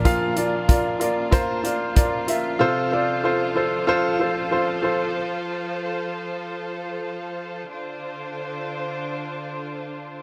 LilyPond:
<<
  \new Staff \with { instrumentName = "Grand piano" } { \time 4/4 \key d \minor \tempo 4 = 94 <f' bes' f''>8 <f' bes' d''>8 <f' bes' d''>8 <f' bes' d''>8 <f' bes' c''>8 <f' bes' d''>8 <f' bes' d''>8 <f' bes' e''>8 | <f' a' c''>8 <f' a' d''>8 <f' a' c''>8 <f' a' c''>8 <f' a' c''>8 <f' a' c''>8 <f' a' c''>8 <f' a' c''>8 | r1 | r1 | }
  \new Staff \with { instrumentName = "Grand piano" } { \clef bass \time 4/4 \key d \minor <bes, f>4. r2 r8 | c4. r2 r8 | r1 | r1 | }
  \new Staff \with { instrumentName = "String section" } { \time 4/4 \key d \minor <bes d' f'>1 | <f a' c''>1~ | <f a' c''>1 | <d d' f' c''>1 | }
  \new DrumStaff \with { instrumentName = "Drums" } \drummode { \time 4/4 <hh bd>8 hh8 <hh bd>8 hh8 <hh bd>8 hh8 <hh bd>8 hh8 | r4 r4 r4 r4 | r4 r4 r4 r4 | r4 r4 r4 r4 | }
>>